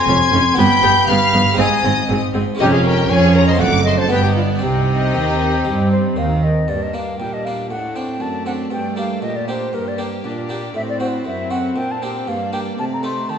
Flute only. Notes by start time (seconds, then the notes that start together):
Already playing: C6
0.58 B5
1.09 B5
1.59 G#5
2.60 G4
2.73 G#4
2.84 A#4
3.10 C#5
3.35 C#5
3.47 D#5
3.60 F#5
3.84 D#5
3.98 C5
4.10 B4
4.23 G4
4.36 F4
4.62 G4
5.92 C5
6.18 F5
6.44 D#5
6.69 D5
6.83 D#5
6.94 F5
7.19 G5
7.33 D#5
7.45 F5
7.70 F#5
7.96 G5
8.22 A5
8.46 F#5
8.72 G5
8.98 F5
9.22 D#5
9.36 D5
9.49 C5
9.74 A#4
9.88 D5
10.76 E5
10.89 D5
11.01 C5
11.27 E5
11.51 F#5
11.77 G5
11.91 A5
12.03 G5
12.28 F5
12.53 G5
12.79 A5
12.93 A#5
13.05 C6
13.30 A5